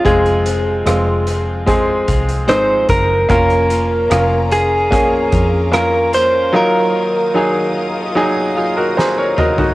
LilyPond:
<<
  \new Staff \with { instrumentName = "String section" } { \time 4/4 \key bes \minor \tempo 4 = 74 << { r1 | <des' f'' bes''>1 | <ees'' ees'''>1 | } \\ { r1 | bes'1~ | bes'1 | } >> }
  \new Staff \with { instrumentName = "Clean electric guitar" } { \time 4/4 \key bes \minor aes'2 r4 c''8 bes'8 | bes'4. aes'4. bes'8 c''8 | bes'2 r2 | }
  \new Staff \with { instrumentName = "Grand piano" } { \time 4/4 \key bes \minor << { r1 | r1 | ees4. r4 <f' aes'>16 <ges' bes'>16 <aes' c'' bes''>16 <bes' des''>16 <ges' bes' ees''>16 <ees' ges'>16 | } \\ { <aes c' f'>4 <aes c' f'>4 <aes c' aes'>4 <aes c' ees'>4 | <bes des' f'>4 <bes des' f'>4 <bes des' aes'>4 <bes des' f'>4 | <ges ees' f'>4 <ges ees' aes'>4 <ges ees' aes'>4 r4 | } >> }
  \new Staff \with { instrumentName = "Clean electric guitar" } { \time 4/4 \key bes \minor <f, c f aes c' f'>8 <f, c f aes c' f'>8 <f, c f aes c' f'>8 <f aes c' f'>8 <f aes c' f'>8 <f aes c' f'>4 <f aes c' f'>8 | <f bes des' f'>8 <f bes des' f'>8 <f bes des' f'>8 <bes des' f'>8 <f bes des' f'>8 <bes des' f'>4 <bes des' f'>8 | <ees ges bes ees' f'>8 <ees ges bes ees' f'>8 <ees ges bes ees' f'>8 <bes ees' f'>8 <ges bes ees' f'>8 <bes ees' f'>4 <bes ees' f'>8 | }
  \new Staff \with { instrumentName = "Fingered electric bass" } { \clef bass \time 4/4 \key bes \minor f,,4 f,,4. c,8 aes,,8 ges,,8 | f,,4 f,,4. f,4. | r1 | }
  \new DrumStaff \with { instrumentName = "Drums" } \drummode { \time 4/4 <hh bd>16 hh16 hh8 <hh ss>8 hh8 <hh bd>8 <hh bd>16 hh16 <hh ss>8 <hh bd>8 | <hh bd>16 hh16 hh8 <hh ss>8 hh8 <hh bd>8 <hh bd>8 <hh ss>8 <hh ss>8 | r4 r4 r4 sn8 toml16 tomfh16 | }
>>